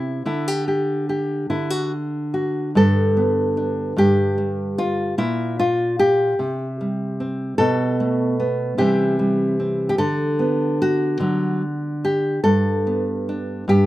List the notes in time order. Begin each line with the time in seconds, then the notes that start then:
Already playing: C3 C4 E4
0.26 D3 E4
0.48 G4
0.68 G4
1.09 G4
1.50 D3 E4
1.70 F#4
2.34 F#4
2.75 G2 A4
3.17 B3
3.57 D4
3.96 G2 G4
4.38 G3
4.78 F4
5.18 A#2 E4
5.59 F4
5.99 G4
6.39 C3
6.81 G3
7.20 C4
7.58 B2 A4
8.00 A3
8.40 B3
8.78 C3 E3 G3 C4 G4
9.19 G3
9.60 C4
9.89 G4
9.98 D3 A4
10.39 B3
10.82 F#4
11.20 D3 F#3
12.05 G4
12.44 G2 A4
12.87 B3
13.29 D4
13.68 G2 G4